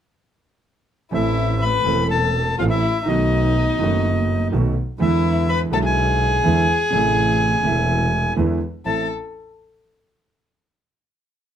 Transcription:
1.11 A1 A2 E3 A3 C4 E4 A4 E5
1.61 B4 B5
1.84 E1 E2 E3 A3 C4
1.88 A4
2.10 A4 A5
2.59 A1 A2 E3 A3 C4 F4 A4 F5
2.70 E4 E5
3.06 B1 B2 D#3 A3 B3 D#4 F#4 D#5
3.79 F#1 F#2 D#3 A3 B3
3.83 F#4
4.52 B1 B2 D#3 A3 B3 F#4
4.98 E2 D3 E3 G#3 B3 E4 E5
5.02 E4
5.49 B4 B5
5.70 B1 B2 D3 G#3 B3 E4 A4 A5
5.85 G#4 G#5
6.43 E2 D3 E3 G#3 B3 E4
6.90 A1 A2 C3 E3 A3
6.95 E4
7.63 E1 E2 C3 E3 A3 E4
8.36 E2 D3 E3 G#3 B3 E4
8.85 A1 A3 C4 E4 A4 A5

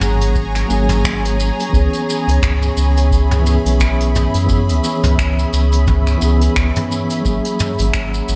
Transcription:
Already playing: F#3 A#3 C#4 G#4 C#5 G#5 A#5
0.01 G#1, mid tom, shaker
0.21 closed hi-hat, shaker
0.36 kick, shaker
0.55 finger snap, closed hi-hat, shaker
0.66 F#3 A#3
0.70 G#1 C#4 G#4, shaker
0.89 closed hi-hat, mid tom, shaker
1.05 finger snap, kick, shaker
1.25 closed hi-hat, shaker
1.40 shaker
1.60 closed hi-hat, shaker
1.69 E3 B3
1.73 C#2 C#4 G#4 E5 B5, kick, shaker
1.93 closed hi-hat, shaker
2.10 shaker
2.27 C#2, closed hi-hat, shaker
2.42 C#2, finger snap, kick, mid tom, shaker
2.62 shaker
2.77 C#2, shaker
2.97 closed hi-hat, shaker
3.11 kick, shaker
3.31 mid tom, shaker
3.42 E3 B3
3.46 C#4 G#4, shaker
3.66 B1, closed hi-hat, shaker
3.80 finger snap, kick, shaker
4.00 closed hi-hat, shaker
4.16 mid tom, shaker
4.34 F#2, closed hi-hat, shaker
4.45 E3 B3, shaker
4.49 C#4 G#4, kick
4.69 C#2, closed hi-hat, shaker
4.84 shaker
5.04 C#2, closed hi-hat, mid tom, shaker
5.18 C#2, finger snap, kick, shaker
5.39 shaker
5.53 C#2, shaker
5.72 closed hi-hat, shaker
5.87 kick, mid tom, shaker
6.07 finger snap, shaker
6.18 E3 B3
6.22 C#2 C#4 G#4, shaker
6.41 closed hi-hat, shaker
6.56 C#2, finger snap, kick, shaker
6.76 closed hi-hat, mid tom, shaker
6.92 shaker
7.10 closed hi-hat, shaker
7.21 F#3 A#3
7.25 G#1 C#4 G#4 C#5 F#5 A#5, kick, shaker
7.45 closed hi-hat, shaker
7.60 mid tom, shaker
7.79 G#1, closed hi-hat, shaker
7.94 G#1, finger snap, kick, shaker
8.14 shaker
8.28 G#1, shaker

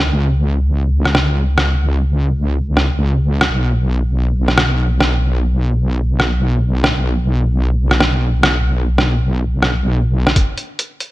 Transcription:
Already playing: C#2
1.05 cross-stick
1.15 cross-stick
1.58 cross-stick
2.77 cross-stick
3.41 cross-stick
3.50 B1
4.48 cross-stick
4.58 cross-stick
5.01 cross-stick
6.20 cross-stick
6.84 cross-stick
7.91 cross-stick
8.00 cross-stick
8.43 cross-stick
8.98 cross-stick
9.63 cross-stick
10.27 cross-stick
10.36 kick, closed hi-hat
10.58 closed hi-hat
10.79 closed hi-hat
11.00 closed hi-hat

